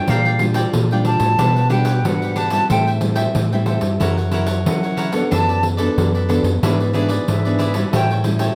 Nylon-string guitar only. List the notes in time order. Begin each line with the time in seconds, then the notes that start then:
Already playing: G3 D4 F4
0.09 A#2
0.41 G3 D4 F4
0.75 F3
0.92 G3 D4 F4
1.40 B2 G3 D4 F#4
1.71 G3 D4 F#4
2.05 B2 G3 D4 F#4
2.52 G3 C4 E4
2.70 A2
3.02 G3 C4 E4
3.36 E3
3.53 G3 C4 E4
4.01 F#3 C#4 E4 A#4
4.33 C#4 E4 A#4
4.67 C#3 C#4 E4 A#4
5.13 B3 D4 A4
5.33 F#3
5.79 B3 D4 A4
5.98 F#3
6.29 B3 D4 A4
6.63 G#2 E3 B3 D4
6.95 E3 B3 D4
7.28 G#2
7.46 E3 B3 D4
7.75 G3 C#4 E4
7.94 A2
8.25 G3 C#4 E4